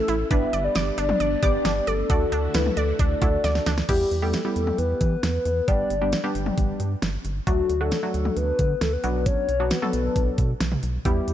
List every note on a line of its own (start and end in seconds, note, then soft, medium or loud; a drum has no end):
0.00 0.15 A3 medium
0.00 0.29 A3 medium
0.00 0.15 C#4 medium
0.00 0.29 C#4 medium
0.00 0.15 E4 medium
0.00 0.29 E4 loud
0.00 0.15 A4 medium
0.00 0.28 A4 loud
0.08 0.24 A1 loud
0.08 0.24 E4 loud
0.08 closed hi-hat medium
0.31 0.46 G1 loud
0.31 2.08 G3 medium
0.31 2.08 B3 medium
0.31 0.99 B3 medium
0.31 0.46 D4 medium
0.31 2.08 D4 medium
0.31 0.99 D4 medium
0.31 0.99 G4 medium
0.31 0.99 B4 medium
0.31 0.66 E5 loud
0.31 kick loud
0.31 closed hi-hat medium
0.53 0.69 G1 loud
0.53 0.68 D5 medium
0.53 closed hi-hat medium
0.64 0.97 D5 loud
0.75 0.91 G1 loud
0.75 0.91 D6 medium
0.75 snare loud
0.75 closed hi-hat medium
0.98 1.14 G1 loud
0.98 1.13 D4 medium
0.98 1.89 D5 loud
0.98 closed hi-hat medium
1.09 mid tom medium
1.20 1.36 G1 loud
1.20 1.36 D5 medium
1.20 closed hi-hat medium
1.43 1.58 G1 loud
1.43 1.94 B3 medium
1.43 1.94 D4 medium
1.43 1.94 G4 medium
1.43 1.94 D5 medium
1.43 1.58 D6 medium
1.43 kick loud
1.43 closed hi-hat medium
1.65 1.81 G1 loud
1.65 1.80 D4 loud
1.65 snare loud
1.65 closed hi-hat medium
1.87 2.03 G1 loud
1.87 2.56 A4 loud
1.87 2.03 D5 medium
1.87 closed hi-hat medium
2.10 2.25 D2 loud
2.10 3.87 D3 medium
2.10 3.87 A3 medium
2.10 2.79 A3 medium
2.10 2.78 D4 medium
2.10 3.87 E4 medium
2.10 3.87 F#4 loud
2.10 2.79 F#4 medium
2.10 2.79 A4 medium
2.10 2.25 D5 medium
2.10 kick loud
2.10 closed hi-hat medium
2.32 2.48 D2 loud
2.32 2.48 D4 medium
2.32 closed hi-hat medium
2.54 2.70 D2 loud
2.54 2.70 E4 medium
2.54 2.76 B4 medium
2.54 snare loud
2.54 closed hi-hat medium
2.66 mid tom medium
2.77 2.93 D2 loud
2.77 3.01 A4 medium
2.77 2.92 D5 medium
2.77 closed hi-hat medium
2.99 3.15 D2 loud
2.99 3.15 D4 medium
2.99 3.66 D5 loud
2.99 kick loud
2.99 closed hi-hat medium
3.22 3.37 D2 medium
3.22 3.73 A3 medium
3.22 3.73 D4 medium
3.22 3.37 E4 medium
3.22 3.73 F#4 medium
3.22 3.73 A4 medium
3.22 kick loud
3.22 closed hi-hat medium
3.44 3.60 D2 loud
3.44 3.59 D5 medium
3.44 snare medium
3.44 closed hi-hat medium
3.55 snare medium
3.66 3.82 D2 loud
3.66 3.82 D4 loud
3.66 snare medium
3.66 closed hi-hat medium
3.78 snare medium
3.89 4.05 E2 loud
3.89 4.15 G3 medium
3.89 4.15 B3 medium
3.89 4.15 E4 medium
3.89 4.15 G4 medium
3.89 4.24 G4 medium
3.89 kick loud
3.89 closed hi-hat medium
3.89 crash medium
4.11 4.35 E2 loud
4.11 closed hi-hat medium
4.22 4.40 G3 medium
4.22 4.40 B3 medium
4.22 4.40 E4 medium
4.22 4.40 G4 medium
4.22 4.55 A4 medium
4.33 snare loud
4.33 closed hi-hat medium
4.45 5.14 G3 medium
4.45 5.14 B3 medium
4.45 5.14 E4 medium
4.45 5.14 G4 medium
4.56 4.72 E2 medium
4.56 4.80 A4 medium
4.56 closed hi-hat medium
4.67 mid tom medium
4.78 4.94 E2 loud
4.78 5.69 B4 loud
4.78 closed hi-hat medium
5.01 5.17 E3 medium
5.01 kick medium
5.01 closed hi-hat medium
5.23 5.39 E2 loud
5.23 snare loud
5.23 closed hi-hat medium
5.45 5.61 E2 medium
5.45 closed hi-hat medium
5.68 5.84 G1 loud
5.68 5.94 G3 medium
5.68 5.94 B3 medium
5.68 5.94 D4 medium
5.68 5.94 G4 medium
5.68 6.35 D5 loud
5.68 kick loud
5.68 closed hi-hat medium
5.90 6.14 G1 loud
5.90 closed hi-hat medium
6.01 6.19 G3 medium
6.01 6.19 B3 medium
6.01 6.19 D4 medium
6.01 6.19 G4 medium
6.12 snare loud
6.12 closed hi-hat medium
6.24 6.93 G3 medium
6.24 6.93 B3 medium
6.24 6.93 D4 medium
6.24 6.93 G4 loud
6.35 6.51 G1 loud
6.35 closed hi-hat medium
6.46 mid tom medium
6.58 6.73 G1 loud
6.58 kick medium
6.58 closed hi-hat medium
6.80 6.96 G2 loud
6.80 closed hi-hat medium
7.02 7.18 G1 loud
7.02 snare loud
7.02 closed hi-hat medium
7.25 7.40 G1 loud
7.25 closed hi-hat medium
7.47 7.63 D2 loud
7.47 7.73 F#3 medium
7.47 7.73 A3 medium
7.47 7.73 D4 medium
7.47 7.73 F#4 medium
7.47 7.82 F#4 medium
7.47 kick loud
7.47 closed hi-hat medium
7.69 7.93 D2 loud
7.69 closed hi-hat medium
7.81 7.98 F#3 medium
7.81 7.98 A3 medium
7.81 7.98 D4 medium
7.81 7.98 F#4 medium
7.81 8.14 A4 medium
7.92 snare loud
7.92 closed hi-hat medium
8.03 8.72 F#3 medium
8.03 8.72 A3 medium
8.03 8.72 D4 medium
8.03 8.72 F#4 medium
8.14 8.30 D2 loud
8.14 8.38 A4 medium
8.14 closed hi-hat medium
8.25 mid tom medium
8.37 8.52 D2 loud
8.37 8.81 B4 loud
8.37 closed hi-hat medium
8.59 8.75 D3 medium
8.59 kick medium
8.59 closed hi-hat medium
8.81 8.97 D2 loud
8.81 8.94 A4 medium
8.81 snare loud
8.81 closed hi-hat medium
8.93 9.28 B4 loud
9.04 9.35 B1 loud
9.04 9.49 F#3 medium
9.04 9.49 B3 medium
9.04 9.49 D4 medium
9.04 9.49 F#4 medium
9.04 closed hi-hat medium
9.26 9.72 C#5 loud
9.26 kick loud
9.26 closed hi-hat medium
9.49 9.72 B1 loud
9.49 closed hi-hat medium
9.60 9.77 F#3 medium
9.60 9.77 B3 medium
9.60 9.77 D4 medium
9.60 9.77 F#4 medium
9.71 10.61 B4 medium
9.71 snare loud
9.71 closed hi-hat medium
9.82 10.51 F#3 medium
9.82 10.51 B3 medium
9.82 10.51 D4 medium
9.82 10.51 A4 medium
9.82 mid tom medium
9.93 10.09 B1 loud
9.93 closed hi-hat medium
10.16 10.31 B1 loud
10.16 kick medium
10.16 closed hi-hat medium
10.38 10.54 B2 loud
10.38 kick medium
10.38 closed hi-hat medium
10.60 10.76 B1 loud
10.60 snare loud
10.60 closed hi-hat medium
10.72 mid tom medium
10.83 10.99 B1 medium
10.83 closed hi-hat medium
11.05 11.21 E2 loud
11.05 11.31 G3 medium
11.05 11.31 B3 medium
11.05 11.31 E4 medium
11.05 11.31 G4 medium
11.05 11.34 G4 medium
11.05 kick loud
11.05 closed hi-hat medium
11.28 11.34 E2 loud
11.28 closed hi-hat medium